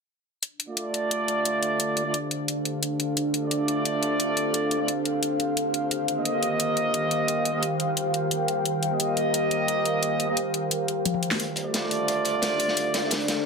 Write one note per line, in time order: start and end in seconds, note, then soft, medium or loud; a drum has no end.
0.43 5.87 D4 medium
0.43 6.39 D4 medium
0.43 5.87 A4 medium
0.43 3.14 D5 medium
0.43 11.36 F5 medium
0.43 closed hi-hat medium
0.60 closed hi-hat medium
0.68 2.03 A3 medium
0.68 2.03 F4 medium
0.68 2.03 D5 medium
0.73 13.46 G4 medium
0.73 closed hi-hat medium
0.89 13.46 F5 medium
0.94 13.46 C5 medium
0.94 closed hi-hat medium
1.11 closed hi-hat medium
1.28 closed hi-hat medium
1.45 closed hi-hat medium
1.63 closed hi-hat medium
1.80 closed hi-hat medium
1.97 closed hi-hat medium
2.05 2.15 A3 medium
2.05 2.15 F4 medium
2.05 2.15 D5 medium
2.14 closed hi-hat medium
2.31 closed hi-hat medium
2.48 closed hi-hat medium
2.65 closed hi-hat medium
2.83 closed hi-hat medium
3.00 closed hi-hat medium
3.17 5.88 C5 medium
3.17 closed hi-hat medium
3.34 closed hi-hat medium
3.43 4.78 A3 medium
3.43 4.78 F4 medium
3.43 4.78 D5 medium
3.51 closed hi-hat medium
3.68 closed hi-hat medium
3.85 closed hi-hat medium
4.03 closed hi-hat medium
4.20 closed hi-hat medium
4.37 closed hi-hat medium
4.54 closed hi-hat medium
4.71 closed hi-hat medium
4.80 4.89 A3 medium
4.80 4.89 F4 medium
4.80 4.89 D5 medium
4.88 closed hi-hat medium
5.05 closed hi-hat medium
5.23 closed hi-hat medium
5.40 closed hi-hat medium
5.57 closed hi-hat medium
5.74 closed hi-hat medium
5.91 11.40 D#3 medium
5.91 11.36 G4 medium
5.91 11.36 A#4 medium
5.91 11.36 G5 medium
5.91 closed hi-hat medium
6.08 closed hi-hat medium
6.17 7.52 A#3 medium
6.17 7.52 G4 medium
6.17 7.52 D#5 medium
6.25 closed hi-hat medium
6.43 closed hi-hat medium
6.60 closed hi-hat medium
6.77 closed hi-hat medium
6.94 closed hi-hat medium
7.11 closed hi-hat medium
7.28 closed hi-hat medium
7.45 closed hi-hat medium
7.54 7.63 A#3 medium
7.54 7.63 G4 medium
7.54 7.63 D#5 medium
7.63 closed hi-hat medium
7.80 closed hi-hat medium
7.97 closed hi-hat medium
8.14 closed hi-hat medium
8.31 closed hi-hat medium
8.48 closed hi-hat medium
8.65 closed hi-hat medium
8.83 closed hi-hat medium
8.91 10.26 A#3 medium
8.91 10.26 G4 medium
8.91 10.26 D#5 medium
9.00 closed hi-hat medium
9.17 closed hi-hat medium
9.34 closed hi-hat medium
9.51 closed hi-hat medium
9.68 closed hi-hat medium
9.85 closed hi-hat medium
10.03 closed hi-hat medium
10.20 closed hi-hat medium
10.28 10.38 A#3 medium
10.28 10.38 G4 medium
10.28 10.38 D#5 medium
10.37 closed hi-hat medium
10.54 closed hi-hat medium
10.71 closed hi-hat medium
10.88 closed hi-hat medium
11.05 closed hi-hat medium
11.05 high tom medium
11.14 high tom medium
11.23 closed hi-hat medium
11.31 snare medium
11.40 13.46 D4 medium
11.40 13.46 A4 medium
11.40 13.46 D5 medium
11.40 13.46 F5 medium
11.40 closed hi-hat medium
11.56 closed hi-hat medium
11.65 13.01 A3 medium
11.65 13.01 F4 medium
11.65 13.01 D5 medium
11.74 snare loud
11.74 closed hi-hat medium
11.91 closed hi-hat medium
12.08 closed hi-hat medium
12.25 closed hi-hat medium
12.42 snare loud
12.42 closed hi-hat medium
12.59 closed hi-hat medium
12.68 snare soft
12.77 closed hi-hat medium
12.94 snare medium
12.94 closed hi-hat medium
13.03 13.12 A3 medium
13.03 13.12 F4 medium
13.03 13.12 D5 medium
13.11 snare loud
13.11 closed hi-hat medium
13.20 closed hi-hat soft
13.28 snare medium
13.28 closed hi-hat medium